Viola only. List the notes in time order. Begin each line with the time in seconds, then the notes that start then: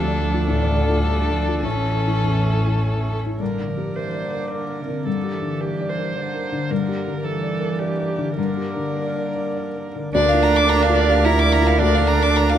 Already playing: D4
1.06 D4
1.65 C#4
3.39 A#4
3.96 C5
4.51 A#4
5.06 A4
5.61 G4
5.90 C5
6.71 A#4
7.24 A4
7.79 G4
8.37 A#4
10.14 A#4